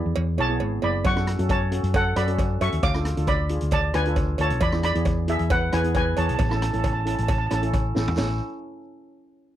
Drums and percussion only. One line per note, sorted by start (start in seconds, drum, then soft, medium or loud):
0.16 cowbell loud
0.38 cowbell medium
0.60 cowbell medium
0.82 cowbell medium
1.05 kick loud
1.05 closed hi-hat medium
1.05 cowbell medium
1.17 cross-stick medium
1.27 cross-stick loud
1.27 closed hi-hat medium
1.39 closed hi-hat medium
1.49 kick loud
1.49 closed hi-hat medium
1.49 cowbell medium
1.72 closed hi-hat loud
1.84 closed hi-hat medium
1.94 kick loud
1.94 closed hi-hat medium
1.94 cowbell loud
2.16 cross-stick medium
2.16 closed hi-hat medium
2.16 cowbell medium
2.28 closed hi-hat medium
2.38 kick loud
2.38 closed hi-hat medium
2.38 cowbell medium
2.61 closed hi-hat medium
2.61 cowbell medium
2.72 closed hi-hat medium
2.83 kick loud
2.83 closed hi-hat medium
2.83 cowbell loud
2.94 cross-stick medium
3.05 cross-stick loud
3.05 closed hi-hat medium
3.17 closed hi-hat medium
3.27 kick loud
3.27 closed hi-hat medium
3.27 cowbell loud
3.49 closed hi-hat medium
3.61 closed hi-hat medium
3.71 kick loud
3.71 closed hi-hat medium
3.71 cowbell loud
3.94 cross-stick medium
3.94 closed hi-hat medium
3.94 cowbell medium
4.05 closed hi-hat medium
4.16 kick loud
4.16 closed hi-hat medium
4.16 cowbell medium
4.38 closed hi-hat medium
4.38 cowbell medium
4.50 closed hi-hat medium
4.61 kick loud
4.61 closed hi-hat medium
4.61 cowbell loud
4.72 cross-stick medium
4.83 cross-stick loud
4.83 closed hi-hat loud
4.95 closed hi-hat medium
5.05 kick loud
5.05 closed hi-hat medium
5.05 cowbell medium
5.28 closed hi-hat loud
5.39 closed hi-hat medium
5.50 kick loud
5.50 closed hi-hat medium
5.50 cowbell loud
5.72 cross-stick loud
5.72 closed hi-hat medium
5.72 cowbell medium
5.84 closed hi-hat medium
5.94 kick loud
5.94 closed hi-hat medium
5.94 cowbell medium
6.17 closed hi-hat medium
6.17 cowbell medium
6.29 closed hi-hat medium
6.39 kick loud
6.39 closed hi-hat medium
6.39 cowbell loud
6.51 cross-stick medium
6.62 cross-stick loud
6.62 closed hi-hat loud
6.73 closed hi-hat medium
6.84 kick medium
6.84 closed hi-hat medium
6.84 cowbell medium
7.06 closed hi-hat medium
7.18 closed hi-hat medium
7.28 kick loud
7.28 closed hi-hat medium
7.28 cowbell loud
7.51 cross-stick medium
7.51 closed hi-hat medium
7.51 cowbell medium
7.63 closed hi-hat medium
7.74 kick loud
7.74 closed hi-hat medium
7.74 cowbell medium
7.96 snare medium
8.07 floor tom loud
8.18 snare loud
8.18 cowbell medium
8.18 crash medium